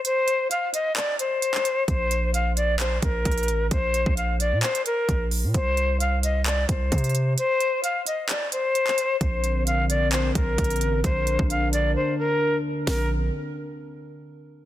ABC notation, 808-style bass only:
X:1
M:4/4
L:1/16
Q:1/4=131
K:Bb
V:1 name="808-style bass" clef=bass
z16 | B,,,8- B,,,2 B,,,2 B,,,2 A,,,2 | B,,,3 B,,,4 B,, z4 B,,,3 B,, | C,,8- C,,2 C,,2 C,4 |
z16 | B,,,8- B,,,2 B,,,2 B,,,2 A,,,2 | B,,,3 B,,,4- B,,, z8 | B,,,4 z12 |]